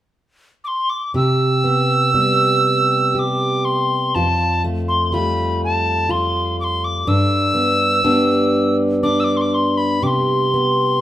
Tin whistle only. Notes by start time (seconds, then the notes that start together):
0.64 C6 D6
0.90 D6
1.16 E6
3.16 D6 E6
3.65 C6
4.15 A5
4.88 C6
5.14 B5
5.64 A5
6.11 C6
6.60 C6 D6
6.84 D6
7.08 E6
9.03 D6
9.20 E6
9.24 D6
9.37 C6
9.41 D6
9.54 C6
9.77 B5
10.03 C6 D6